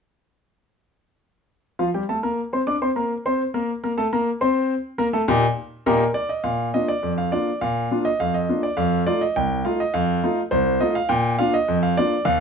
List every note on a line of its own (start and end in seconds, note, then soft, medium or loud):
1.79 1.87 F3 medium
1.79 1.87 F4 medium
1.79 1.87 F5 medium
1.94 2.02 G3 medium
1.94 2.02 G4 medium
1.94 2.02 G5 medium
2.09 2.17 A3 medium
2.09 2.17 A4 medium
2.09 2.17 A5 medium
2.23 2.39 A#3 medium
2.23 2.39 A#4 medium
2.23 2.39 A#5 medium
2.53 2.61 C4 medium
2.53 2.61 C5 medium
2.53 2.61 C6 medium
2.67 2.75 D4 medium
2.67 2.75 D5 medium
2.67 2.75 D6 medium
2.82 2.90 C4 medium
2.82 2.90 C5 medium
2.82 2.90 C6 medium
2.96 3.12 A#3 medium
2.96 3.12 A#4 medium
2.96 3.12 A#5 medium
3.26 3.41 C4 medium
3.26 3.41 C5 medium
3.26 3.41 C6 medium
3.54 3.70 A#3 medium
3.54 3.70 A#4 medium
3.54 3.70 A#5 medium
3.84 3.91 A#3 medium
3.84 3.91 A#4 medium
3.84 3.91 A#5 medium
3.98 4.06 A3 medium
3.98 4.06 A4 medium
3.98 4.05 A5 medium
4.13 4.28 A#3 medium
4.13 4.29 A#4 medium
4.13 4.28 A#5 medium
4.41 4.73 C4 medium
4.41 4.73 C5 medium
4.41 4.73 C6 medium
4.98 5.06 A#3 medium
4.98 5.06 A#4 medium
4.98 5.06 A#5 medium
5.13 5.21 A3 medium
5.13 5.21 A4 medium
5.13 5.21 A5 medium
5.28 5.44 A#2 loud
5.28 5.44 A#3 medium
5.28 5.44 D#4 medium
5.28 5.44 G4 medium
5.86 6.02 A#2 medium
5.86 6.02 A#3 medium
5.86 6.02 D#4 medium
5.86 6.02 G4 medium
5.86 6.10 A#4 medium
6.14 6.29 D5 medium
6.29 6.44 D#5 medium
6.44 6.69 A#2 medium
6.44 6.67 F5 medium
6.74 6.90 A#3 soft
6.74 6.90 D4 soft
6.74 6.91 F4 soft
6.74 6.88 D#5 medium
6.88 7.12 D5 medium
7.03 7.28 F2 medium
7.18 7.32 F5 medium
7.32 7.48 A#3 soft
7.32 7.48 D4 soft
7.32 7.49 F4 soft
7.32 7.60 D5 medium
7.61 7.86 A#2 medium
7.61 8.03 F5 medium
7.91 8.07 A#3 soft
7.91 8.07 D4 medium
7.91 8.07 F4 medium
8.05 8.19 D#5 medium
8.20 8.44 F2 medium
8.20 8.34 F5 medium
8.34 8.62 D#5 medium
8.49 8.65 A#3 soft
8.49 8.65 D4 soft
8.49 8.65 F4 soft
8.63 8.78 D5 medium
8.77 9.02 F2 medium
8.77 9.00 F5 medium
9.06 9.22 A3 soft
9.06 9.23 D#4 soft
9.06 9.23 F4 medium
9.06 9.21 D5 medium
9.21 9.36 D#5 medium
9.36 9.61 C2 medium
9.36 9.63 G5 medium
9.65 9.81 A3 soft
9.65 9.81 D#4 medium
9.65 9.81 F4 medium
9.65 9.79 F5 medium
9.80 9.94 D#5 medium
9.94 10.18 F2 medium
9.94 10.40 F5 medium
10.23 10.39 A3 medium
10.23 10.39 D#4 medium
10.23 10.40 F4 medium
10.51 10.76 C2 medium
10.51 10.79 C5 medium
10.80 10.96 A3 soft
10.80 10.97 D#4 medium
10.80 10.97 F4 medium
10.80 10.95 D#5 medium
10.95 11.10 F5 medium
11.09 11.34 A#2 medium
11.09 11.37 G5 loud
11.39 11.55 A#3 medium
11.39 11.55 D4 medium
11.39 11.55 F4 medium
11.39 11.53 F5 loud
11.54 11.77 D#5 medium
11.68 11.92 F2 medium
11.83 11.97 F5 medium
11.97 12.13 A#3 soft
11.97 12.14 D4 soft
11.97 12.14 F4 medium
11.97 12.24 D5 medium
12.25 12.40 D#2 medium
12.25 12.40 F5 loud